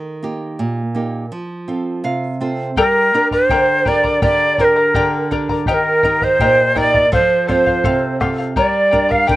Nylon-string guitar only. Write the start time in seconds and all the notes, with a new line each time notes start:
Already playing: D#3
0.23 A#3 D#4 G4
0.59 A#2
0.95 A#3 D#4 G4
1.32 F3
1.68 C4 F4 A4
2.04 C3 F5
2.41 C4 F4 A4 C5
2.77 G3
3.14 D4 G4 A#4
3.51 D3
3.87 D4 G4 A#4
4.23 D3
4.60 D4 G4 A#4
4.96 D3
5.31 D4 G4 A#4
5.69 D#3
6.05 D#4 G4 A#4
6.41 A#2
6.76 D#4 G4 A#4
7.12 F3
7.49 C4 F4 A4
7.85 C3
8.21 C4 F4 A4
8.57 G3
8.93 D4 G4 A#4
9.29 D3